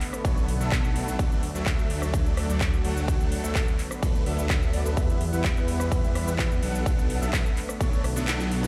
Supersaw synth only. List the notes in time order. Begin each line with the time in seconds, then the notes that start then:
0.25 F#3 B3 D4 A4 C#5
0.60 F#3 B3 D4 A4 E5
0.72 F#3 B3 D4 A4
1.19 F#3 A3 D4 A4 D5
1.55 F#3 A3 D4 A4 E5
2.26 F#3 A3 D4 A4 D5
2.49 F#3 A3 D4 A4 D5
2.85 F#3 A3 D4 A4 F#5
3.44 F#3 A3 D4 A4 E5
4.03 F#3 A3 D4 A4 B4
4.26 F#3 A3 D4 A4 E5
4.73 F#3 A3 D4 A4 D5
4.85 F#3 A3 D4 A4 B4
4.97 G3 B3 E4 B4 E5
5.32 G3 B3 E4 B4 F#5
6.03 G3 B3 E4 B4 E5
6.27 G3 B3 E4 B4 E5
6.62 F#3 B3 D4 A4 F#5
7.21 F#3 B3 D4 A4 E5
7.81 F#3 B3 D4 A4 C#5
8.16 F#3 B3 D4 A4 E5
8.28 F#3 B3 D4 A4 F#5